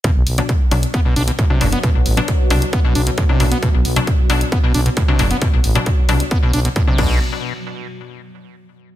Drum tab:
CC |----------------|----------------|----------------|--------------x-|
HH |x-oxx-oxx-oxx-ox|x-oxx-oxx-oxx-ox|x-oxx-oxx-oxx-ox|x-oxx-oxx-oxx---|
BD |o---o---o---o---|o---o---o---o---|o---o---o---o---|o---o---o---o-o-|

CC |----------------|
HH |----------------|
BD |----------------|